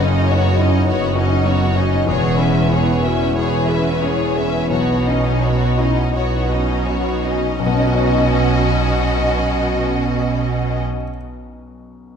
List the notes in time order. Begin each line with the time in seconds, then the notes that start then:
Already playing: F#1 F#2 C#3 B3 C#4 D#4 E4 F#4 B4 C#5
0.00 C#4 D#4 D#5
0.28 B3 D#4 F#4 C#5
0.56 C#4 D#4 E4 F#4 D#5
0.86 F#1 F#2 B3 D#4 F#4 C#5
1.15 C#4 D#4 F#4 D#5
1.45 B3 C#4 D#4 F#4 C#5
1.74 C#4 D#4 F#4 D#5
2.05 E1 E2 B3 G#4 C#5
2.35 C#4 B4 E5
2.68 B3 E4 G#4 C#5
3.02 C#4 F#4 G#4 B4 E5
3.34 E1 E2 B3 E4 G#4 C#5
3.67 C#4 G#4 B4 E5
3.99 B3 C#4 E4 C#5
4.04 G#4
4.35 C#4 G#4 B4 E5
4.69 B1 B2 B3 F#4 C#5
5.04 C#4 D#4 D#5
5.41 B3 D#4 F#4 C#5
5.77 C#4 D#4 E4 F#4 D#5
6.12 B1 B2 B3 D#4 F#4 C#5
6.49 C#4 D#4 F#4 D#5
6.86 B3 C#4 D#4 F#4 C#5
7.23 C#4 D#4 F#4 D#5
7.59 B1 B2 C#4 F#4 D#5
7.66 B2 B3
7.72 C#4
7.80 D#4
7.87 F#4
7.94 D#5